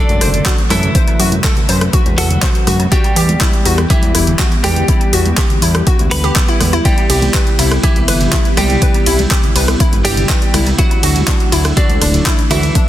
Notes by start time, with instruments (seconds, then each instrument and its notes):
Already playing: analog synth pad C3 F#3 A3 A4, clean electric guitar D3 D4, synth pluck D5, impact
0.09 analog synth bass F#2, closed hi-hat, high conga
0.21 analog synth bass F#1, synth arpeggio sound C5, cross-stick, open hi-hat
0.34 closed hi-hat, low conga
0.46 synth arpeggio sound F#4, kick, clap, closed hi-hat
0.58 closed hi-hat
0.70 analog synth bass F#2, clean electric guitar E3 E4, synth arpeggio sound A4, synth pluck E5, cross-stick, open hi-hat, high conga, high woodblock
0.83 closed hi-hat, low conga
0.95 analog synth pad B4, synth arpeggio sound C5, kick, closed hi-hat
1.08 closed hi-hat, high woodblock
1.20 analog synth bass F#2, synth arpeggio sound F#4, open hi-hat
1.32 closed hi-hat, high conga
1.44 synth arpeggio sound A4, kick, clap, closed hi-hat
1.56 closed hi-hat, low conga
1.69 analog synth bass F#2, synth arpeggio sound C5, open hi-hat, high woodblock
1.81 cross-stick, closed hi-hat
1.93 synth arpeggio sound F#4, kick, closed hi-hat
2.06 analog synth bass E2, closed hi-hat, high conga
2.18 analog synth bass E2, clean electric guitar F#3 F#4, synth arpeggio sound A4, synth pluck F#5, open hi-hat
2.30 closed hi-hat, low conga
2.42 synth arpeggio sound C5, kick, clap, closed hi-hat
2.55 closed hi-hat
2.67 analog synth bass F#2, synth arpeggio sound F#4, cross-stick, open hi-hat, high conga, low conga
2.80 closed hi-hat, high woodblock
2.92 analog synth pad E3 G3 B3 G4, clean electric guitar G3 G4, synth arpeggio sound F#4, synth pluck G5, kick, closed hi-hat
3.04 closed hi-hat, high woodblock
3.16 analog synth bass E2, synth arpeggio sound G4, open hi-hat
3.29 closed hi-hat, high conga
3.41 synth arpeggio sound E4, kick, clap, closed hi-hat
3.53 closed hi-hat
3.65 analog synth bass E2, synth arpeggio sound F#4, open hi-hat, high woodblock
3.78 cross-stick, closed hi-hat
3.90 clean electric guitar E3 E4, synth arpeggio sound G4, synth pluck E5, kick, closed hi-hat
4.02 analog synth bass E2, closed hi-hat, high conga
4.15 analog synth bass E1, synth arpeggio sound E4, cross-stick, open hi-hat
4.27 closed hi-hat, low conga
4.39 synth arpeggio sound F#4, kick, clap, closed hi-hat
4.52 closed hi-hat
4.64 analog synth bass E2, clean electric guitar G3 G4, synth arpeggio sound G4, synth pluck G5, cross-stick, open hi-hat, high conga, high woodblock
4.76 closed hi-hat, low conga
4.88 synth arpeggio sound E4, kick, closed hi-hat
5.01 closed hi-hat, high woodblock
5.13 analog synth bass E2, synth arpeggio sound F#4, open hi-hat
5.26 closed hi-hat, high conga
5.37 synth arpeggio sound G4, kick, clap, closed hi-hat
5.50 closed hi-hat, low conga
5.62 analog synth bass E2, synth arpeggio sound E4, open hi-hat, high woodblock
5.75 cross-stick, closed hi-hat
5.87 synth arpeggio sound F#4, kick, closed hi-hat
5.99 analog synth bass D2, closed hi-hat, high conga
6.11 analog synth bass D2, clean electric guitar B3 B4, synth pluck B5, open hi-hat
6.24 synth arpeggio sound G4, closed hi-hat, low conga
6.36 kick, clap, closed hi-hat
6.48 synth arpeggio sound E4, closed hi-hat
6.60 analog synth bass E2, cross-stick, open hi-hat, high conga, low conga
6.73 synth arpeggio sound E4, closed hi-hat, high woodblock
6.85 analog synth pad C3 B3 E4 G4, clean electric guitar G3 G4, synth arpeggio sound E4, synth pluck G5, kick, closed hi-hat, ride
6.98 closed hi-hat, high woodblock
7.10 analog synth bass C2, synth arpeggio sound G4, open hi-hat, ride
7.22 closed hi-hat, high conga
7.34 synth arpeggio sound B4, kick, clap, closed hi-hat, ride
7.47 closed hi-hat
7.59 analog synth bass C2, synth arpeggio sound E4, open hi-hat, ride, high woodblock
7.71 cross-stick, closed hi-hat
7.83 clean electric guitar E3 E4, synth arpeggio sound G4, synth pluck E5, kick, closed hi-hat, ride
7.96 analog synth bass C2, closed hi-hat, high conga
8.08 analog synth bass G1, synth arpeggio sound B4, cross-stick, open hi-hat, ride
8.21 closed hi-hat, low conga
8.33 synth arpeggio sound E4, kick, clap, closed hi-hat, ride
8.45 closed hi-hat
8.57 analog synth bass C2, clean electric guitar G3 G4, synth arpeggio sound G4, synth pluck G5, cross-stick, open hi-hat, ride, high conga, high woodblock
8.70 closed hi-hat, low conga
8.82 synth arpeggio sound B4, kick, closed hi-hat, ride
8.94 closed hi-hat, high woodblock
9.06 analog synth bass C2, synth arpeggio sound E4, open hi-hat, ride
9.19 closed hi-hat, high conga
9.31 synth arpeggio sound G4, kick, clap, closed hi-hat
9.43 closed hi-hat, low conga
9.56 analog synth bass C2, synth arpeggio sound B4, open hi-hat, ride, high woodblock
9.68 cross-stick, closed hi-hat
9.80 synth arpeggio sound E4, kick, closed hi-hat, ride
9.92 analog synth bass G1, closed hi-hat, high conga
10.05 analog synth bass G1, clean electric guitar G3 G4, synth arpeggio sound G4, synth pluck G5, open hi-hat, ride
10.17 closed hi-hat, low conga
10.29 synth arpeggio sound B4, kick, clap, closed hi-hat, ride
10.42 closed hi-hat
10.54 analog synth bass C2, synth arpeggio sound E4, cross-stick, open hi-hat, ride, high conga, low conga
10.67 closed hi-hat, high woodblock
10.78 analog synth pad D3 F#3 A3 D4, clean electric guitar F#3 F#4, synth arpeggio sound E4, synth pluck F#5, kick, closed hi-hat, ride
10.90 closed hi-hat, high woodblock
11.03 analog synth bass D2, synth arpeggio sound F#4, open hi-hat, ride
11.16 closed hi-hat, high conga
11.28 synth arpeggio sound D4, kick, clap, closed hi-hat, ride
11.40 closed hi-hat
11.52 analog synth bass D2, synth arpeggio sound E4, open hi-hat, ride, high woodblock
11.65 cross-stick, closed hi-hat
11.77 clean electric guitar D3 D4, synth arpeggio sound F#4, synth pluck D5, kick, closed hi-hat, ride
11.90 analog synth bass D2, closed hi-hat, high conga
12.02 analog synth bass D1, synth arpeggio sound D4, cross-stick, open hi-hat, ride
12.14 closed hi-hat, low conga
12.26 synth arpeggio sound E4, kick, clap, closed hi-hat
12.39 closed hi-hat
12.50 analog synth bass D2, clean electric guitar E3 E4, synth arpeggio sound F#4, synth pluck E5, cross-stick, open hi-hat, ride, high conga, high woodblock
12.63 closed hi-hat, low conga
12.75 synth arpeggio sound D4, kick, closed hi-hat, ride